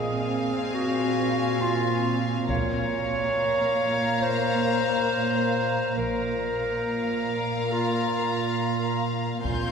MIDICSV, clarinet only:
0, 0, Header, 1, 2, 480
1, 0, Start_track
1, 0, Key_signature, -5, "minor"
1, 0, Tempo, 869565
1, 1376, Time_signature, 4, 2, 24, 8
1, 5362, End_track
2, 0, Start_track
2, 0, Title_t, "Clarinet"
2, 0, Program_c, 0, 71
2, 0, Note_on_c, 0, 68, 66
2, 406, Note_off_c, 0, 68, 0
2, 410, Note_on_c, 0, 66, 69
2, 894, Note_on_c, 0, 65, 68
2, 902, Note_off_c, 0, 66, 0
2, 1220, Note_off_c, 0, 65, 0
2, 1371, Note_on_c, 0, 73, 86
2, 2329, Note_on_c, 0, 72, 81
2, 2338, Note_off_c, 0, 73, 0
2, 3292, Note_off_c, 0, 72, 0
2, 3297, Note_on_c, 0, 70, 75
2, 4262, Note_on_c, 0, 65, 62
2, 4270, Note_off_c, 0, 70, 0
2, 5064, Note_off_c, 0, 65, 0
2, 5218, Note_on_c, 0, 65, 63
2, 5362, Note_off_c, 0, 65, 0
2, 5362, End_track
0, 0, End_of_file